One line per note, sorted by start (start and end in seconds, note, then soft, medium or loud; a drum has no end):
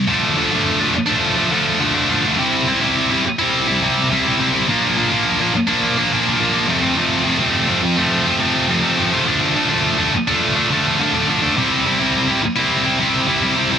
0.07 0.35 D3 loud
0.07 0.36 F3 loud
0.07 0.37 A3 medium
0.07 0.38 D4 loud
0.36 0.53 D3 medium
0.36 0.52 F3 medium
0.36 0.51 A3 medium
0.36 0.50 D4 medium
0.51 0.93 D3 medium
0.51 0.82 F3 medium
0.51 0.80 A3 medium
0.51 0.79 D4 medium
0.80 0.94 F3 medium
0.80 0.94 A3 medium
0.80 0.95 D4 medium
0.95 muted distorted electric guitar stroke soft
1.07 1.38 F3 medium
1.07 1.36 A3 medium
1.07 1.35 D4 medium
1.36 1.51 F3 medium
1.36 1.52 A3 medium
1.36 1.53 D4 medium
1.51 1.78 D3 medium
1.51 1.80 F3 medium
1.51 1.80 A3 medium
1.51 1.82 D4 medium
1.80 2.07 D3 medium
1.80 1.96 F3 medium
1.80 1.95 A3 loud
1.80 1.93 D4 loud
1.95 2.08 F3 medium
1.95 2.09 A3 medium
1.95 2.10 D4 medium
2.09 2.36 D3 medium
2.09 2.25 F3 medium
2.09 2.24 A3 medium
2.09 2.23 D4 medium
2.24 2.38 F3 medium
2.24 2.37 A3 medium
2.24 2.37 D4 medium
2.37 2.64 C3 loud
2.37 2.66 G3 medium
2.37 2.67 C4 loud
2.37 2.67 E4 loud
2.66 2.82 C3 medium
2.66 2.82 G3 medium
2.66 2.81 C4 medium
2.66 2.80 E4 medium
2.81 3.24 C3 medium
2.81 3.12 G3 medium
2.81 3.10 C4 medium
2.81 3.08 E4 medium
3.10 3.24 G3 medium
3.10 3.25 C4 medium
3.10 3.25 E4 medium
3.25 muted distorted electric guitar stroke soft
3.39 3.69 G3 medium
3.39 3.67 C4 medium
3.39 3.66 E4 medium
3.67 3.82 G3 medium
3.67 3.83 C4 medium
3.67 3.84 E4 medium
3.82 4.09 C3 medium
3.82 4.11 G3 medium
3.82 4.12 C4 medium
3.82 4.12 E4 medium
4.11 4.37 C3 medium
4.11 4.27 G3 medium
4.11 4.26 C4 medium
4.11 4.24 E4 loud
4.25 4.39 G3 medium
4.25 4.40 C4 medium
4.25 4.40 E4 medium
4.39 4.66 C3 medium
4.39 4.55 G3 medium
4.39 4.53 C4 medium
4.39 4.52 E4 medium
4.53 4.68 G3 medium
4.53 4.67 C4 medium
4.53 4.66 E4 medium
4.68 4.95 A#2 loud
4.68 4.97 F3 medium
4.68 4.97 A#3 loud
4.68 4.98 D4 loud
4.96 5.12 A#2 medium
4.96 5.12 F3 medium
4.96 5.10 A#3 medium
4.96 5.09 D4 medium
5.10 5.53 A#2 medium
5.10 5.42 F3 medium
5.10 5.40 A#3 medium
5.10 5.38 D4 medium
5.39 5.54 F3 medium
5.39 5.54 A#3 medium
5.39 5.54 D4 medium
5.54 muted distorted electric guitar stroke soft
5.68 5.99 F3 medium
5.68 5.97 A#3 medium
5.68 5.96 D4 medium
5.97 6.12 F3 medium
5.97 6.12 A#3 medium
5.97 6.13 D4 medium
6.11 6.37 A#2 medium
6.11 6.39 F3 medium
6.11 6.39 A#3 medium
6.11 6.41 D4 medium
6.39 6.66 A#2 loud
6.39 6.55 F3 loud
6.39 6.53 A#3 loud
6.39 6.52 D4 loud
6.53 6.68 F3 medium
6.53 6.67 A#3 medium
6.53 6.66 D4 medium
6.67 6.95 F2 loud
6.67 6.96 C3 loud
6.67 6.84 F3 loud
6.67 6.83 A3 loud
6.67 6.81 C4 loud
6.82 6.97 F3 medium
6.82 6.98 A3 medium
6.82 6.98 C4 medium
6.96 7.41 F2 medium
6.96 7.24 C3 loud
6.96 7.26 F3 loud
6.96 7.27 A3 loud
6.96 7.27 C4 loud
7.25 7.40 C3 medium
7.25 7.40 F3 medium
7.25 7.40 A3 medium
7.25 7.38 C4 medium
7.39 7.99 F2 medium
7.39 7.81 C3 medium
7.39 7.70 F3 medium
7.39 7.69 A3 medium
7.39 7.67 C4 medium
7.68 7.83 F3 medium
7.68 7.83 A3 medium
7.68 7.82 C4 medium
7.83 muted distorted electric guitar stroke soft
7.96 8.27 F3 medium
7.96 8.26 A3 medium
7.96 8.24 C4 medium
8.26 8.39 F3 medium
8.26 8.40 A3 medium
8.26 8.41 C4 medium
8.39 8.67 C3 medium
8.39 8.68 F3 medium
8.39 8.69 A3 medium
8.39 8.70 C4 medium
8.68 9.12 F2 loud
8.68 8.95 C3 loud
8.68 8.83 F3 loud
8.68 8.82 A3 loud
8.68 8.80 C4 loud
8.82 8.96 F3 medium
8.82 8.97 A3 medium
8.82 8.98 C4 medium
8.96 9.24 C3 medium
8.96 9.13 F3 medium
8.96 9.12 A3 medium
8.96 9.10 C4 medium
9.11 9.25 F3 medium
9.11 9.25 A3 medium
9.11 9.25 C4 medium
9.25 9.53 D3 medium
9.25 9.54 F3 medium
9.25 9.55 A3 medium
9.25 9.55 D4 loud
9.54 9.71 D3 medium
9.54 9.70 F3 medium
9.54 9.69 A3 medium
9.54 9.68 D4 medium
9.69 10.13 D3 medium
9.69 10.00 F3 medium
9.69 9.98 A3 medium
9.69 9.97 D4 medium
9.98 10.13 F3 medium
9.98 10.13 A3 medium
9.98 10.13 D4 medium
10.14 muted distorted electric guitar stroke soft
10.28 10.57 F3 medium
10.28 10.56 A3 medium
10.28 10.55 D4 medium
10.56 10.70 F3 medium
10.56 10.71 A3 medium
10.56 10.72 D4 medium
10.70 10.98 D3 medium
10.70 10.99 F3 medium
10.70 11.00 A3 medium
10.70 11.01 D4 medium
10.99 11.26 D3 medium
10.99 11.16 F3 medium
10.99 11.15 A3 loud
10.99 11.13 D4 loud
11.15 11.28 F3 medium
11.15 11.29 A3 medium
11.15 11.29 D4 medium
11.28 11.54 D3 medium
11.28 11.43 F3 medium
11.28 11.42 A3 medium
11.28 11.41 D4 medium
11.42 11.56 F3 medium
11.42 11.55 A3 medium
11.42 11.54 D4 medium
11.56 11.83 C3 medium
11.56 11.85 G3 medium
11.56 11.86 C4 loud
11.56 11.87 E4 loud
11.85 12.01 C3 medium
11.85 12.00 G3 medium
11.85 11.99 C4 medium
11.85 11.98 E4 medium
11.99 12.40 C3 medium
11.99 12.29 G3 medium
11.99 12.28 C4 medium
11.99 12.26 E4 medium
12.28 12.41 G3 medium
12.28 12.41 C4 medium
12.28 12.41 E4 medium
12.42 muted distorted electric guitar stroke soft
12.56 12.85 G3 medium
12.56 12.84 C4 medium
12.56 12.82 E4 medium
12.83 12.98 G3 medium
12.83 12.99 C4 medium
12.83 13.00 E4 medium
12.98 13.25 C3 medium
12.98 13.26 G3 medium
12.98 13.27 C4 medium
12.98 13.28 E4 medium
13.26 13.55 C3 medium
13.26 13.43 G3 loud
13.26 13.42 C4 loud
13.26 13.40 E4 loud
13.42 13.56 G3 medium
13.42 13.57 C4 medium
13.42 13.58 E4 medium
13.56 13.79 C3 medium
13.56 13.72 G3 medium
13.56 13.71 C4 medium
13.56 13.70 E4 medium
13.71 13.79 G3 medium
13.71 13.79 C4 medium
13.71 13.79 E4 medium